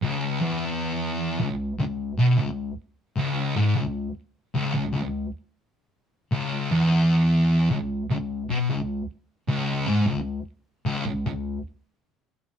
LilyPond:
<<
  \new Staff \with { instrumentName = "Distorted electric guitar" } { \clef bass \time 4/4 \key cis \minor \tempo 4 = 76 cis,8 e,4~ e,16 cis,8 cis,8 b,16 cis,8 r8 | cis,8 gis,16 cis,8 r8 cis,16 cis,16 cis,8 r4 r16 | cis,8 e,4~ e,16 cis,8 cis,8 b,16 cis,8 r8 | cis,8 gis,16 cis,8 r8 cis,16 cis,16 cis,8 r4 r16 | }
  \new Staff \with { instrumentName = "Distorted electric guitar" } { \clef bass \time 4/4 \key cis \minor cis,8 e,4~ e,16 cis,8 cis,8 b,16 cis,8 r8 | cis,8 gis,16 cis,8 r8 cis,16 cis,16 cis,8 r4 r16 | cis,8 e,4~ e,16 cis,8 cis,8 b,16 cis,8 r8 | cis,8 gis,16 cis,8 r8 cis,16 cis,16 cis,8 r4 r16 | }
>>